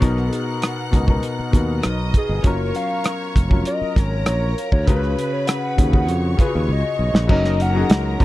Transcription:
0.00 0.29 B1 loud
0.00 0.58 B2 medium
0.00 0.58 B3 medium
0.00 0.59 D#4 medium
0.00 0.34 A#4 medium
0.00 0.60 A#4 medium
0.00 1.80 F#5 medium
0.00 1.80 F#6 medium
0.00 kick medium
0.00 closed hi-hat medium
0.17 cross-stick soft
0.33 0.59 G#4 medium
0.33 closed hi-hat medium
0.62 cross-stick medium
0.62 closed hi-hat medium
0.91 1.20 C#2 medium
0.91 1.01 B2 medium
0.91 1.02 B3 medium
0.91 1.03 D#4 medium
0.91 kick medium
0.91 closed hi-hat medium
0.95 1.03 A#4 medium
1.06 1.36 B2 medium
1.06 1.36 B3 medium
1.06 1.37 D#4 medium
1.06 1.37 A#4 medium
1.06 kick medium
1.23 closed hi-hat medium
1.39 muted fingered electric bass stroke soft
1.51 1.80 D#2 medium
1.51 2.09 B2 medium
1.51 2.10 B3 medium
1.51 2.11 D#4 medium
1.51 kick medium
1.51 closed hi-hat medium
1.55 2.12 A#4 medium
1.83 2.11 B1 medium
1.83 2.43 D#5 medium
1.83 2.43 D#6 medium
1.83 cross-stick medium
1.83 closed hi-hat medium
2.14 2.49 G#4 medium
2.14 kick medium
2.14 closed hi-hat medium
2.29 2.42 G1 medium
2.43 2.71 F#1 medium
2.43 3.10 F#3 medium
2.43 3.11 C#4 medium
2.43 3.11 F4 medium
2.43 3.63 C#5 medium
2.43 3.63 C#6 medium
2.43 kick medium
2.43 closed hi-hat medium
2.47 3.12 A#4 loud
2.47 2.75 A#4 loud
2.75 4.64 A#4 medium
2.75 3.32 F5 loud
2.75 closed hi-hat medium
3.04 cross-stick medium
3.04 closed hi-hat medium
3.36 3.62 F1 medium
3.36 kick medium
3.36 closed hi-hat medium
3.49 4.26 F#3 medium
3.49 4.26 C#4 medium
3.49 4.27 F4 medium
3.49 4.28 A#4 medium
3.49 kick medium
3.65 4.85 A#4 medium
3.65 4.01 D#5 medium
3.65 4.85 A#5 medium
3.65 closed hi-hat medium
3.81 muted fingered electric bass stroke soft
3.96 4.23 G#1 medium
3.96 kick medium
3.96 closed hi-hat medium
4.01 4.11 C#5 medium
4.11 4.25 C#5 medium
4.26 4.53 A#1 medium
4.26 4.68 C#5 medium
4.26 cross-stick loud
4.26 closed hi-hat medium
4.58 5.14 F5 soft
4.58 closed hi-hat medium
4.72 4.90 D2 medium
4.72 4.89 C#5 medium
4.72 kick medium
4.86 5.14 C#2 loud
4.86 5.44 C#3 medium
4.86 5.44 C#4 medium
4.86 5.45 F#4 medium
4.86 4.95 A#4 medium
4.86 6.05 B4 medium
4.86 5.35 B4 medium
4.86 6.05 B5 medium
4.86 kick loud
4.86 closed hi-hat medium
4.96 5.49 B4 loud
5.03 cross-stick soft
5.19 closed hi-hat medium
5.33 5.49 C#5 medium
5.47 6.38 F#5 loud
5.47 cross-stick loud
5.47 closed hi-hat medium
5.77 6.09 D#2 medium
5.77 5.87 C#3 medium
5.77 5.87 C#4 soft
5.77 5.88 F#4 soft
5.77 5.88 G#4 medium
5.77 kick medium
5.77 closed hi-hat medium
5.91 6.21 C#3 medium
5.91 6.21 C#4 medium
5.91 6.22 F#4 medium
5.91 6.23 G#4 medium
5.91 kick medium
6.07 6.35 F2 loud
6.07 7.27 C#5 medium
6.07 7.26 C#6 medium
6.07 closed hi-hat medium
6.37 6.95 C#3 medium
6.37 6.95 C#4 medium
6.37 6.45 F4 medium
6.37 6.97 G#4 medium
6.37 6.74 B4 medium
6.37 muted fingered electric bass stroke soft
6.37 kick medium
6.37 closed hi-hat medium
6.46 6.99 F#4 medium
6.55 6.68 D#2 medium
6.69 6.82 C#2 medium
6.69 7.30 D#5 loud
6.99 7.12 B1 medium
7.14 7.27 A#1 medium
7.14 snare medium
7.27 7.82 F#1 loud
7.27 7.57 F#3 medium
7.27 7.57 C#4 medium
7.27 7.58 D#4 medium
7.27 8.25 A#4 medium
7.27 7.63 D#5 loud
7.27 8.25 A#5 medium
7.27 kick loud
7.27 crash loud
7.32 7.59 A#4 loud
7.44 snare soft
7.60 8.21 F#5 loud
7.60 closed hi-hat medium
7.73 8.02 F#3 medium
7.73 8.03 C#4 medium
7.73 8.04 D#4 medium
7.73 8.04 G#4 medium
7.90 8.16 C#2 medium
7.90 8.25 C#5 medium
7.90 snare loud
7.90 closed hi-hat loud
8.18 8.25 A#1 loud
8.18 8.25 F#3 medium
8.18 8.25 C#4 medium
8.18 8.25 D#4 medium
8.18 kick medium
8.18 open hi-hat medium

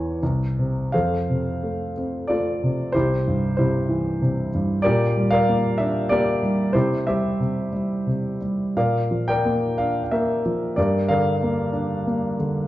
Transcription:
0.00 0.20 E2 medium
0.00 0.21 E3 soft
0.00 0.18 E4 soft
0.00 0.18 C#5 medium
0.23 0.91 C2 medium
0.59 0.93 C3 soft
0.92 2.91 F2 medium
0.92 1.92 A4 medium
0.92 1.92 C5 medium
0.92 1.91 F5 medium
1.30 2.59 C3 soft
1.63 2.29 A3 soft
1.97 2.92 C4 soft
2.27 2.93 A3 soft
2.27 2.91 F4 medium
2.27 2.91 A4 medium
2.27 2.95 D5 medium
2.63 2.94 C3 soft
2.92 4.81 C2 medium
2.92 3.57 E4 medium
2.92 3.57 G4 medium
2.92 3.55 C5 medium
3.27 4.49 G2 soft
3.57 4.20 C3 soft
3.57 4.48 E4 medium
3.57 4.48 G4 soft
3.57 4.48 C5 medium
3.89 4.81 E3 soft
4.22 4.83 C3 medium
4.54 4.84 G2 medium
4.82 5.74 G4 medium
4.82 5.31 A#4 medium
4.82 5.31 D5 medium
4.86 6.72 A#2 medium
5.17 6.39 G3 soft
5.31 6.10 A#4 medium
5.31 6.08 D5 medium
5.31 5.75 F5 loud
5.49 6.09 A#3 medium
5.78 6.72 D4 medium
5.78 6.11 E5 medium
6.09 6.73 A#3 medium
6.09 6.71 G4 medium
6.09 6.71 A#4 medium
6.09 6.76 D5 medium
6.43 6.74 G3 medium
6.73 7.39 C3 medium
6.73 7.68 E4 medium
6.73 7.07 G4 medium
6.73 7.04 C5 medium
7.07 7.71 G3 medium
7.07 8.38 G4 medium
7.07 8.38 C5 medium
7.07 8.37 E5 medium
7.40 8.05 C3 soft
7.73 8.40 G3 soft
8.07 8.74 C3 soft
8.41 8.75 G3 soft
8.77 10.74 A#2 medium
8.77 9.28 A#4 medium
8.77 9.27 D5 medium
8.77 9.29 F5 medium
9.11 10.41 F3 soft
9.28 10.11 A#4 medium
9.28 10.25 D5 medium
9.28 9.75 G5 medium
9.45 10.10 A#3 soft
9.78 10.75 D4 soft
9.78 10.02 F5 medium
10.04 10.11 F5 medium
10.11 10.75 A#3 medium
10.11 10.74 A#4 medium
10.11 10.73 E5 medium
10.46 10.77 F3 soft
10.76 12.65 G2 medium
10.76 11.70 G4 medium
10.76 11.09 A#4 medium
10.76 11.09 D5 medium
11.08 12.34 D3 soft
11.08 12.35 A#4 medium
11.08 12.35 D5 medium
11.08 12.34 F5 medium
11.43 12.05 A#3 medium
11.72 12.65 D4 medium
12.07 12.67 A#3 medium
12.39 12.68 D3 soft

